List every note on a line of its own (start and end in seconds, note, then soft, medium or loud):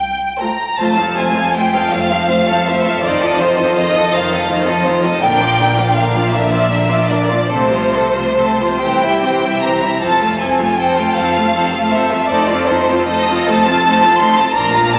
0.00 0.58 C2 soft
0.00 0.36 G5 medium
0.39 0.70 A3 soft
0.39 0.71 F4 soft
0.39 0.70 A4 soft
0.39 0.69 C5 soft
0.39 0.81 A#5 medium
0.79 1.80 F1 medium
0.79 1.80 F2 medium
0.79 0.98 A3 soft
0.79 0.98 F4 soft
0.79 0.97 C5 soft
0.79 1.18 A5 medium
0.98 1.18 F3 soft
0.98 1.18 C4 soft
0.98 1.18 A4 soft
0.98 1.18 F5 soft
1.17 1.36 A3 soft
1.17 1.37 F4 soft
1.17 1.37 C5 soft
1.17 1.56 G#5 medium
1.36 1.55 F3 soft
1.36 1.55 C4 soft
1.36 1.56 A4 soft
1.36 1.56 F5 soft
1.55 1.73 A3 soft
1.55 1.73 F4 soft
1.55 1.73 C5 soft
1.55 1.93 G5 medium
1.74 1.93 F3 soft
1.74 1.93 C4 soft
1.74 1.93 A4 soft
1.74 1.93 F5 soft
1.92 2.91 F1 medium
1.92 2.91 F2 medium
1.92 2.12 A3 soft
1.92 2.12 F4 soft
1.92 2.12 C5 soft
1.92 2.68 F5 medium
2.10 2.30 F3 soft
2.10 2.30 C4 soft
2.10 2.30 A4 soft
2.10 2.30 F5 soft
2.28 2.47 A3 soft
2.28 2.48 F4 soft
2.28 2.47 C5 soft
2.46 2.67 A4 soft
2.46 2.66 F5 soft
2.51 2.68 F3 soft
2.51 2.68 C4 soft
2.67 2.87 A3 soft
2.67 2.87 F4 soft
2.67 2.86 C5 soft
2.67 3.04 E5 medium
2.85 3.05 F3 soft
2.85 3.05 C4 soft
2.85 3.04 A4 soft
2.85 3.04 F5 soft
3.02 4.01 F1 medium
3.02 4.00 F2 medium
3.02 3.21 D#3 soft
3.02 3.21 D#4 medium
3.02 3.20 F4 soft
3.02 3.21 C5 soft
3.02 3.39 D5 medium
3.22 3.40 F3 soft
3.22 3.41 F4 soft
3.22 3.40 A4 soft
3.22 3.40 D#5 soft
3.39 3.59 D#3 soft
3.39 3.59 D#4 soft
3.39 3.58 F4 soft
3.39 3.76 C5 medium
3.39 3.59 C5 soft
3.57 3.78 F3 soft
3.57 3.78 F4 soft
3.57 3.76 A4 soft
3.57 3.76 D#5 soft
3.75 3.95 D#3 soft
3.75 3.95 D#4 soft
3.75 3.93 F4 soft
3.75 3.93 C5 medium
3.75 4.13 D#5 medium
3.95 4.15 F3 soft
3.95 4.15 F4 soft
3.95 4.14 A4 soft
3.95 4.14 D#5 soft
4.13 5.09 F1 medium
4.13 5.09 F2 medium
4.13 4.33 D#3 medium
4.13 4.32 D#4 medium
4.13 4.32 F4 medium
4.13 4.32 C5 medium
4.13 4.50 F5 medium
4.32 4.51 F3 soft
4.32 4.51 F4 soft
4.32 4.50 A4 soft
4.32 4.50 D#5 medium
4.49 4.68 D#3 soft
4.49 4.68 D#4 medium
4.49 4.66 F4 soft
4.49 4.66 C5 medium
4.66 4.87 F3 medium
4.66 4.86 F4 medium
4.66 4.85 A4 soft
4.66 4.85 D#5 soft
4.85 5.04 D#3 soft
4.85 5.04 D#4 soft
4.85 5.04 F4 soft
4.85 5.03 C5 medium
5.03 5.22 F3 soft
5.03 5.22 F4 soft
5.03 5.22 A4 medium
5.03 5.22 D#5 soft
5.21 6.20 A#1 medium
5.21 6.20 A#2 medium
5.21 5.39 D3 medium
5.21 5.39 D4 medium
5.21 5.39 A#4 soft
5.21 5.91 G5 medium
5.39 5.58 F3 soft
5.39 5.58 A#3 medium
5.39 5.59 F4 soft
5.39 5.59 D5 soft
5.59 5.78 D3 soft
5.59 5.78 D4 medium
5.59 5.78 D4 soft
5.59 5.78 A#4 soft
5.77 5.96 F3 soft
5.77 5.96 A#3 soft
5.77 5.97 F4 soft
5.77 5.97 D5 soft
5.96 6.13 D3 soft
5.96 6.14 D4 soft
5.96 6.14 A#4 soft
5.96 6.33 F5 medium
6.15 6.33 F3 soft
6.15 6.34 A#3 soft
6.15 6.34 F4 soft
6.15 6.34 D5 soft
6.32 7.35 A#1 medium
6.32 7.35 A#2 medium
6.32 6.52 D3 soft
6.32 6.52 D4 soft
6.32 6.52 A#4 soft
6.32 7.10 E5 medium
6.52 6.71 F3 soft
6.52 6.71 A#3 soft
6.52 6.71 F4 soft
6.52 6.71 D5 soft
6.71 6.89 D3 soft
6.71 6.88 D4 soft
6.71 6.89 D4 soft
6.71 6.89 A#4 soft
6.89 7.10 F3 soft
6.89 7.09 A#3 soft
6.89 7.09 F4 soft
6.89 7.09 D5 soft
7.09 7.29 D3 soft
7.09 7.29 D4 soft
7.09 7.30 D4 soft
7.09 7.29 A#4 soft
7.09 7.50 D5 medium
7.29 7.50 F3 soft
7.29 7.50 A#3 soft
7.29 7.50 F4 soft
7.29 7.50 D5 soft
7.49 8.67 C2 medium
7.49 8.67 C3 medium
7.49 7.70 A3 soft
7.49 7.70 C4 soft
7.49 7.69 A4 soft
7.49 8.80 C5 medium
7.70 7.92 F3 soft
7.70 7.92 A3 soft
7.70 7.93 F4 soft
7.70 7.93 C5 soft
7.94 8.15 A3 soft
7.94 8.16 C4 soft
7.94 8.15 A4 soft
8.14 8.38 F3 soft
8.14 8.36 A3 soft
8.14 8.37 F4 soft
8.14 8.37 C5 soft
8.36 8.58 A3 soft
8.36 8.58 C4 soft
8.36 8.58 A4 soft
8.60 8.82 F3 soft
8.60 8.82 A3 soft
8.60 8.82 F4 soft
8.60 8.81 C5 soft
8.81 9.88 C2 soft
8.81 9.88 C3 soft
8.81 9.02 E3 soft
8.81 9.02 C4 soft
8.81 9.01 G4 soft
8.81 9.01 C5 soft
8.81 9.62 G5 medium
9.01 9.23 G3 soft
9.01 9.22 E4 soft
9.01 9.23 E4 soft
9.01 9.22 E5 soft
9.23 9.43 E3 soft
9.23 9.43 C4 soft
9.23 9.43 G4 soft
9.23 9.43 C5 soft
9.43 9.63 G3 soft
9.43 9.63 E4 soft
9.43 9.63 E5 soft
9.62 9.81 E3 soft
9.62 9.82 C4 soft
9.62 9.81 G4 soft
9.62 9.81 C5 soft
9.62 10.02 A#5 medium
9.81 10.02 G3 soft
9.81 10.02 E4 soft
9.81 10.01 E5 soft
10.01 11.03 F1 medium
10.01 11.03 F2 medium
10.01 10.19 F3 soft
10.01 10.20 C4 soft
10.01 10.20 A4 soft
10.01 10.20 C5 soft
10.01 10.40 A5 medium
10.22 10.41 A3 soft
10.22 10.41 F4 soft
10.22 10.40 A4 soft
10.40 10.61 F3 soft
10.40 10.61 C4 soft
10.40 10.59 A4 soft
10.40 10.60 C5 soft
10.40 10.78 G#5 medium
10.60 10.79 A3 soft
10.60 10.79 F4 soft
10.60 10.78 A4 soft
10.79 10.98 F3 soft
10.79 10.97 C4 soft
10.79 10.96 A4 soft
10.79 10.97 C5 soft
10.79 11.17 G5 medium
10.97 11.17 A3 soft
10.97 11.16 F4 soft
10.97 11.15 A4 soft
11.15 12.16 F1 medium
11.15 12.16 F2 medium
11.15 11.37 F3 soft
11.15 11.37 C4 soft
11.15 11.34 A4 soft
11.15 11.35 C5 soft
11.15 11.91 F5 medium
11.35 11.56 A3 soft
11.35 11.54 F4 soft
11.35 11.54 A4 soft
11.55 11.73 F3 soft
11.55 11.73 C4 soft
11.55 11.71 A4 soft
11.55 11.72 C5 soft
11.72 11.91 F4 soft
11.72 11.90 A4 soft
11.76 11.94 A3 soft
11.91 12.09 A4 soft
11.91 12.10 C5 soft
11.91 12.28 E5 medium
11.95 12.12 F3 soft
11.95 12.12 C4 soft
12.10 12.30 A3 soft
12.10 12.29 F4 soft
12.10 12.28 A4 soft
12.28 13.34 F1 medium
12.28 13.34 F2 medium
12.28 12.48 A3 medium
12.28 12.48 D#4 medium
12.28 12.47 A4 soft
12.28 12.47 C5 soft
12.28 12.67 D5 medium
12.48 12.69 C4 soft
12.48 12.68 F4 soft
12.48 12.69 F4 soft
12.48 12.66 A4 soft
12.67 12.89 A3 soft
12.67 12.89 D#4 medium
12.67 12.87 A4 soft
12.67 13.08 C5 medium
12.67 12.88 C5 soft
12.88 13.09 C4 soft
12.88 13.08 F4 soft
12.88 13.09 F4 soft
12.88 13.08 A4 soft
13.08 13.28 A3 soft
13.08 13.28 D#4 soft
13.08 13.27 A4 medium
13.08 13.27 C5 medium
13.08 13.47 D#5 medium
13.30 13.49 C4 soft
13.30 13.49 F4 soft
13.30 13.47 A4 soft
13.47 14.44 F1 medium
13.47 14.44 F2 medium
13.47 13.67 A3 medium
13.47 13.68 D#4 medium
13.47 13.66 A4 medium
13.47 13.66 C5 medium
13.47 14.20 A5 medium
13.66 13.85 C4 soft
13.66 13.84 F4 medium
13.66 13.85 F4 soft
13.66 13.84 A4 soft
13.85 14.03 A3 medium
13.85 14.03 D#4 medium
13.85 14.01 A4 medium
13.85 14.01 C5 medium
14.02 14.22 C4 soft
14.02 14.20 F4 soft
14.02 14.22 F4 soft
14.02 14.20 A4 soft
14.20 14.40 A3 medium
14.20 14.40 D#4 soft
14.20 14.38 A4 medium
14.20 14.38 C5 medium
14.20 14.38 C6 medium
14.39 14.57 C4 soft
14.39 14.57 F4 medium
14.39 14.57 F4 soft
14.39 14.57 A4 medium
14.39 14.57 A5 medium
14.55 14.99 A#1 medium
14.55 14.99 A#2 medium
14.55 14.74 F3 medium
14.55 14.73 D4 medium
14.55 14.72 A#4 medium
14.55 14.72 D5 medium
14.55 14.91 A#5 medium
14.74 14.93 A#3 medium
14.74 14.92 F4 soft
14.74 14.93 F4 medium
14.74 14.93 F5 soft
14.91 14.99 F3 medium
14.91 14.99 D4 medium
14.91 14.99 A#4 soft
14.91 14.99 D5 soft
14.91 14.99 A5 medium